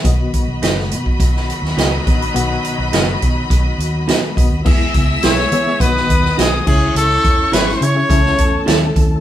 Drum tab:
CC |----------------|----------------|x-------------x-|----------------|
HH |x-x-x-x-x-x-x-xx|x-x-x-x-x-x-x-x-|--x-x-x-x-x-x---|x-x-x-x-x-x-x-x-|
SD |----oo---o-oo---|----o-------o---|----oo---o-oo---|----oo---o--o---|
BD |o-o----oo-----o-|------o-o-----o-|o-o-----o-o---o-|--o-----o-o---o-|